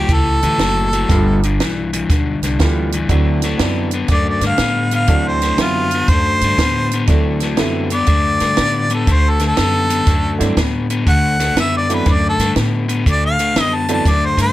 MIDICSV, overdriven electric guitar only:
0, 0, Header, 1, 2, 480
1, 0, Start_track
1, 0, Tempo, 498753
1, 1049, Time_signature, 4, 2, 24, 8
1, 13980, End_track
2, 0, Start_track
2, 0, Title_t, "Overdriven electric guitar"
2, 0, Program_c, 0, 29
2, 90, Note_on_c, 0, 45, 65
2, 97, Note_on_c, 0, 52, 88
2, 374, Note_off_c, 0, 45, 0
2, 377, Note_off_c, 0, 52, 0
2, 416, Note_on_c, 0, 45, 77
2, 418, Note_on_c, 0, 52, 82
2, 554, Note_off_c, 0, 45, 0
2, 558, Note_off_c, 0, 52, 0
2, 566, Note_on_c, 0, 45, 78
2, 576, Note_on_c, 0, 54, 90
2, 853, Note_off_c, 0, 45, 0
2, 858, Note_off_c, 0, 54, 0
2, 896, Note_on_c, 0, 45, 74
2, 898, Note_on_c, 0, 54, 76
2, 1038, Note_off_c, 0, 45, 0
2, 1039, Note_off_c, 0, 54, 0
2, 1059, Note_on_c, 0, 43, 78
2, 1070, Note_on_c, 0, 50, 73
2, 1341, Note_off_c, 0, 43, 0
2, 1346, Note_off_c, 0, 50, 0
2, 1391, Note_on_c, 0, 43, 68
2, 1397, Note_on_c, 0, 50, 78
2, 1527, Note_off_c, 0, 43, 0
2, 1529, Note_off_c, 0, 50, 0
2, 1545, Note_on_c, 0, 43, 78
2, 1553, Note_on_c, 0, 52, 89
2, 1825, Note_off_c, 0, 43, 0
2, 1829, Note_off_c, 0, 52, 0
2, 1859, Note_on_c, 0, 43, 75
2, 1867, Note_on_c, 0, 52, 86
2, 2002, Note_off_c, 0, 43, 0
2, 2006, Note_off_c, 0, 52, 0
2, 2030, Note_on_c, 0, 50, 86
2, 2033, Note_on_c, 0, 43, 69
2, 2308, Note_off_c, 0, 50, 0
2, 2310, Note_off_c, 0, 43, 0
2, 2350, Note_on_c, 0, 43, 70
2, 2356, Note_on_c, 0, 50, 88
2, 2488, Note_off_c, 0, 43, 0
2, 2491, Note_off_c, 0, 50, 0
2, 2513, Note_on_c, 0, 43, 85
2, 2514, Note_on_c, 0, 52, 94
2, 2791, Note_off_c, 0, 43, 0
2, 2791, Note_off_c, 0, 52, 0
2, 2828, Note_on_c, 0, 43, 70
2, 2836, Note_on_c, 0, 52, 77
2, 2968, Note_off_c, 0, 43, 0
2, 2972, Note_off_c, 0, 52, 0
2, 2993, Note_on_c, 0, 50, 76
2, 2998, Note_on_c, 0, 57, 81
2, 3272, Note_off_c, 0, 50, 0
2, 3274, Note_off_c, 0, 57, 0
2, 3310, Note_on_c, 0, 50, 66
2, 3316, Note_on_c, 0, 57, 89
2, 3450, Note_off_c, 0, 50, 0
2, 3453, Note_off_c, 0, 57, 0
2, 3463, Note_on_c, 0, 50, 86
2, 3470, Note_on_c, 0, 59, 91
2, 3747, Note_off_c, 0, 50, 0
2, 3751, Note_off_c, 0, 59, 0
2, 3787, Note_on_c, 0, 50, 67
2, 3793, Note_on_c, 0, 59, 86
2, 3929, Note_off_c, 0, 50, 0
2, 3932, Note_off_c, 0, 59, 0
2, 3961, Note_on_c, 0, 50, 79
2, 3963, Note_on_c, 0, 57, 88
2, 4237, Note_off_c, 0, 50, 0
2, 4238, Note_off_c, 0, 57, 0
2, 4267, Note_on_c, 0, 50, 83
2, 4275, Note_on_c, 0, 57, 80
2, 4410, Note_off_c, 0, 50, 0
2, 4414, Note_off_c, 0, 57, 0
2, 4422, Note_on_c, 0, 50, 89
2, 4435, Note_on_c, 0, 59, 90
2, 4708, Note_off_c, 0, 50, 0
2, 4714, Note_off_c, 0, 59, 0
2, 4740, Note_on_c, 0, 50, 67
2, 4743, Note_on_c, 0, 59, 81
2, 4887, Note_off_c, 0, 50, 0
2, 4888, Note_off_c, 0, 59, 0
2, 4905, Note_on_c, 0, 57, 80
2, 4906, Note_on_c, 0, 50, 81
2, 5189, Note_off_c, 0, 57, 0
2, 5190, Note_off_c, 0, 50, 0
2, 5220, Note_on_c, 0, 50, 75
2, 5227, Note_on_c, 0, 57, 83
2, 5367, Note_off_c, 0, 50, 0
2, 5370, Note_off_c, 0, 57, 0
2, 5392, Note_on_c, 0, 50, 79
2, 5397, Note_on_c, 0, 59, 83
2, 5673, Note_off_c, 0, 50, 0
2, 5676, Note_off_c, 0, 59, 0
2, 5719, Note_on_c, 0, 50, 74
2, 5723, Note_on_c, 0, 59, 70
2, 5857, Note_off_c, 0, 50, 0
2, 5859, Note_off_c, 0, 59, 0
2, 5886, Note_on_c, 0, 50, 73
2, 5894, Note_on_c, 0, 57, 84
2, 6160, Note_off_c, 0, 50, 0
2, 6164, Note_off_c, 0, 57, 0
2, 6200, Note_on_c, 0, 57, 77
2, 6202, Note_on_c, 0, 50, 72
2, 6337, Note_off_c, 0, 57, 0
2, 6338, Note_off_c, 0, 50, 0
2, 6369, Note_on_c, 0, 50, 76
2, 6376, Note_on_c, 0, 59, 85
2, 6642, Note_off_c, 0, 50, 0
2, 6645, Note_off_c, 0, 59, 0
2, 6675, Note_on_c, 0, 50, 66
2, 6681, Note_on_c, 0, 59, 68
2, 6814, Note_off_c, 0, 50, 0
2, 6817, Note_off_c, 0, 59, 0
2, 6830, Note_on_c, 0, 50, 75
2, 6839, Note_on_c, 0, 57, 83
2, 7112, Note_off_c, 0, 50, 0
2, 7116, Note_off_c, 0, 57, 0
2, 7150, Note_on_c, 0, 50, 75
2, 7156, Note_on_c, 0, 57, 78
2, 7292, Note_off_c, 0, 50, 0
2, 7295, Note_off_c, 0, 57, 0
2, 7307, Note_on_c, 0, 50, 81
2, 7308, Note_on_c, 0, 59, 87
2, 7590, Note_off_c, 0, 50, 0
2, 7591, Note_off_c, 0, 59, 0
2, 7616, Note_on_c, 0, 50, 65
2, 7624, Note_on_c, 0, 59, 88
2, 7765, Note_off_c, 0, 50, 0
2, 7769, Note_off_c, 0, 59, 0
2, 7775, Note_on_c, 0, 50, 79
2, 7780, Note_on_c, 0, 57, 77
2, 8064, Note_off_c, 0, 50, 0
2, 8066, Note_off_c, 0, 57, 0
2, 8095, Note_on_c, 0, 50, 70
2, 8095, Note_on_c, 0, 57, 79
2, 8234, Note_off_c, 0, 50, 0
2, 8243, Note_off_c, 0, 57, 0
2, 8245, Note_on_c, 0, 50, 81
2, 8254, Note_on_c, 0, 59, 82
2, 8538, Note_off_c, 0, 50, 0
2, 8543, Note_off_c, 0, 59, 0
2, 8570, Note_on_c, 0, 50, 73
2, 8572, Note_on_c, 0, 59, 81
2, 8721, Note_off_c, 0, 50, 0
2, 8721, Note_off_c, 0, 59, 0
2, 8737, Note_on_c, 0, 50, 70
2, 8743, Note_on_c, 0, 57, 81
2, 9024, Note_off_c, 0, 50, 0
2, 9026, Note_off_c, 0, 57, 0
2, 9047, Note_on_c, 0, 50, 74
2, 9057, Note_on_c, 0, 57, 85
2, 9193, Note_off_c, 0, 50, 0
2, 9203, Note_off_c, 0, 57, 0
2, 9205, Note_on_c, 0, 50, 85
2, 9210, Note_on_c, 0, 59, 98
2, 9496, Note_off_c, 0, 50, 0
2, 9499, Note_off_c, 0, 59, 0
2, 9524, Note_on_c, 0, 50, 75
2, 9528, Note_on_c, 0, 59, 81
2, 9676, Note_off_c, 0, 50, 0
2, 9678, Note_off_c, 0, 59, 0
2, 9695, Note_on_c, 0, 50, 67
2, 9701, Note_on_c, 0, 57, 77
2, 9981, Note_off_c, 0, 50, 0
2, 9984, Note_off_c, 0, 57, 0
2, 10013, Note_on_c, 0, 50, 81
2, 10015, Note_on_c, 0, 57, 78
2, 10160, Note_off_c, 0, 50, 0
2, 10161, Note_off_c, 0, 57, 0
2, 10173, Note_on_c, 0, 50, 82
2, 10176, Note_on_c, 0, 59, 96
2, 10459, Note_off_c, 0, 50, 0
2, 10461, Note_off_c, 0, 59, 0
2, 10493, Note_on_c, 0, 50, 72
2, 10498, Note_on_c, 0, 59, 85
2, 10636, Note_off_c, 0, 50, 0
2, 10641, Note_off_c, 0, 59, 0
2, 10648, Note_on_c, 0, 50, 77
2, 10653, Note_on_c, 0, 57, 75
2, 10935, Note_off_c, 0, 50, 0
2, 10938, Note_off_c, 0, 57, 0
2, 10969, Note_on_c, 0, 50, 72
2, 10970, Note_on_c, 0, 57, 82
2, 11116, Note_off_c, 0, 50, 0
2, 11116, Note_off_c, 0, 57, 0
2, 11128, Note_on_c, 0, 50, 78
2, 11136, Note_on_c, 0, 59, 93
2, 11415, Note_off_c, 0, 50, 0
2, 11419, Note_off_c, 0, 59, 0
2, 11458, Note_on_c, 0, 50, 67
2, 11464, Note_on_c, 0, 59, 81
2, 11599, Note_off_c, 0, 50, 0
2, 11602, Note_off_c, 0, 59, 0
2, 11617, Note_on_c, 0, 50, 82
2, 11629, Note_on_c, 0, 57, 91
2, 11898, Note_off_c, 0, 50, 0
2, 11904, Note_off_c, 0, 57, 0
2, 11936, Note_on_c, 0, 57, 88
2, 11937, Note_on_c, 0, 50, 76
2, 12075, Note_off_c, 0, 50, 0
2, 12077, Note_off_c, 0, 57, 0
2, 12087, Note_on_c, 0, 50, 76
2, 12094, Note_on_c, 0, 59, 89
2, 12372, Note_off_c, 0, 50, 0
2, 12375, Note_off_c, 0, 59, 0
2, 12399, Note_on_c, 0, 50, 67
2, 12403, Note_on_c, 0, 59, 75
2, 12547, Note_off_c, 0, 50, 0
2, 12550, Note_off_c, 0, 59, 0
2, 12570, Note_on_c, 0, 50, 68
2, 12575, Note_on_c, 0, 57, 85
2, 12852, Note_off_c, 0, 50, 0
2, 12855, Note_off_c, 0, 57, 0
2, 12895, Note_on_c, 0, 50, 68
2, 12898, Note_on_c, 0, 57, 86
2, 13034, Note_off_c, 0, 50, 0
2, 13036, Note_off_c, 0, 57, 0
2, 13052, Note_on_c, 0, 50, 80
2, 13053, Note_on_c, 0, 59, 98
2, 13332, Note_off_c, 0, 50, 0
2, 13333, Note_off_c, 0, 59, 0
2, 13366, Note_on_c, 0, 50, 69
2, 13366, Note_on_c, 0, 59, 86
2, 13509, Note_off_c, 0, 50, 0
2, 13509, Note_off_c, 0, 59, 0
2, 13530, Note_on_c, 0, 50, 80
2, 13533, Note_on_c, 0, 57, 81
2, 13810, Note_off_c, 0, 50, 0
2, 13811, Note_off_c, 0, 57, 0
2, 13833, Note_on_c, 0, 50, 71
2, 13838, Note_on_c, 0, 57, 80
2, 13980, Note_off_c, 0, 50, 0
2, 13980, Note_off_c, 0, 57, 0
2, 13980, End_track
0, 0, End_of_file